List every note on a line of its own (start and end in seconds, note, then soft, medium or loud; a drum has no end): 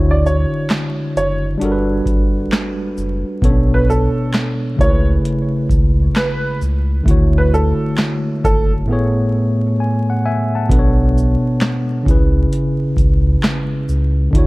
0.00 0.46 D2 loud
0.00 1.56 D3 medium
0.00 1.57 D4 medium
0.00 1.58 E4 medium
0.00 1.59 F#4 medium
0.00 1.63 C#5 medium
0.11 0.24 D5 medium
0.26 0.67 C#5 medium
0.26 shaker soft
0.70 snare loud
0.70 clap medium
0.70 closed hi-hat medium
1.16 1.56 F#1 medium
1.16 1.43 C#5 medium
1.16 closed hi-hat soft
1.16 shaker soft
1.58 2.02 G1 loud
1.58 3.37 G3 medium
1.58 3.38 D4 medium
1.58 3.39 F#4 medium
1.58 closed hi-hat medium
1.63 3.40 A4 medium
1.63 1.72 A#4 medium
1.72 3.45 B4 medium
2.06 2.46 G1 medium
2.06 kick medium
2.06 closed hi-hat soft
2.06 shaker soft
2.52 snare loud
2.52 clap medium
2.52 closed hi-hat medium
2.98 3.24 F#1 medium
2.98 shaker soft
3.42 4.09 B1 loud
3.42 4.79 B2 medium
3.42 4.79 B3 medium
3.42 3.52 C#4 soft
3.42 4.80 A4 medium
3.42 4.80 C#5 medium
3.42 kick loud
3.42 closed hi-hat medium
3.50 4.83 D4 medium
3.74 3.87 B4 medium
3.90 4.30 A4 medium
3.90 shaker soft
4.34 snare loud
4.34 clap medium
4.34 closed hi-hat medium
4.76 5.19 C#2 loud
4.76 7.01 C#3 medium
4.76 7.02 A3 medium
4.76 7.03 E4 medium
4.76 kick loud
4.81 7.04 G#4 medium
4.81 4.90 A#4 medium
4.81 5.07 C#5 medium
4.81 closed hi-hat soft
4.81 shaker soft
4.90 7.08 B4 medium
5.25 closed hi-hat medium
5.69 6.10 C#2 medium
5.69 kick medium
5.69 closed hi-hat soft
5.69 shaker soft
6.16 6.58 B4 medium
6.16 snare loud
6.16 clap medium
6.16 closed hi-hat medium
6.61 7.01 C#2 medium
6.61 shaker soft
7.04 7.73 D2 loud
7.04 8.83 D3 medium
7.04 8.84 A3 medium
7.04 8.85 E4 medium
7.04 kick loud
7.08 8.86 F#4 medium
7.08 8.87 C#5 medium
7.08 closed hi-hat medium
7.38 7.51 B4 medium
7.54 7.94 A4 medium
7.54 shaker soft
7.98 snare loud
7.98 clap medium
7.98 closed hi-hat medium
8.44 8.84 F#1 loud
8.44 8.71 A4 medium
8.44 kick medium
8.44 closed hi-hat soft
8.44 shaker soft
8.85 10.65 A2 medium
8.85 10.66 A3 medium
8.85 10.67 B3 medium
8.91 10.68 G#4 medium
8.91 10.69 C#5 medium
9.80 10.07 G#5 medium
10.10 10.24 F#5 medium
10.26 10.54 E5 medium
10.26 10.53 G#5 medium
10.55 10.98 F#5 medium
10.55 10.98 A5 medium
10.69 11.37 B1 loud
10.69 12.06 B2 medium
10.69 12.06 B3 medium
10.69 12.07 D4 medium
10.69 12.07 A4 medium
10.69 10.80 B4 medium
10.69 kick loud
10.69 closed hi-hat medium
10.79 12.11 C#5 medium
11.18 shaker soft
11.61 snare loud
11.61 clap medium
11.61 closed hi-hat medium
12.04 12.47 C#2 loud
12.04 14.28 C#3 medium
12.04 14.29 C#4 medium
12.04 14.30 E4 medium
12.04 kick loud
12.08 14.31 G#4 medium
12.08 14.32 B4 medium
12.08 closed hi-hat medium
12.08 shaker medium
12.53 closed hi-hat medium
12.97 13.37 C#2 loud
12.97 kick medium
12.97 closed hi-hat soft
12.97 shaker soft
13.43 snare loud
13.43 clap medium
13.43 closed hi-hat medium
13.89 14.29 C#2 medium
13.89 shaker soft
14.31 14.47 D2 loud
14.31 14.47 D3 medium
14.31 14.47 D4 medium
14.31 14.47 E4 medium
14.31 kick loud
14.35 14.47 F#4 medium
14.35 14.47 C#5 medium
14.35 closed hi-hat medium